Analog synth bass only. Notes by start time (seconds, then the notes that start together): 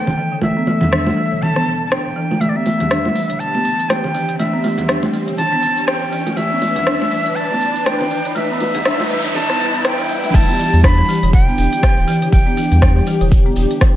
0.07 D1
0.43 E1
0.82 E2
1.31 E1
1.67 E1
2.06 E1
2.41 E1
2.80 E2
3.30 E1
3.65 E1
4.04 D1
4.39 E1
4.78 E2
5.28 E1
5.63 E1
6.02 D1
6.37 E1
6.76 E2
7.26 E1
7.61 E1
8.00 D1
8.35 E1
8.75 E2
9.24 E1
9.59 E2
9.99 E1
10.34 E1
10.73 E2
11.23 E1
11.58 E1
11.97 D1
12.33 E1
12.72 E2
13.21 E1
13.57 E1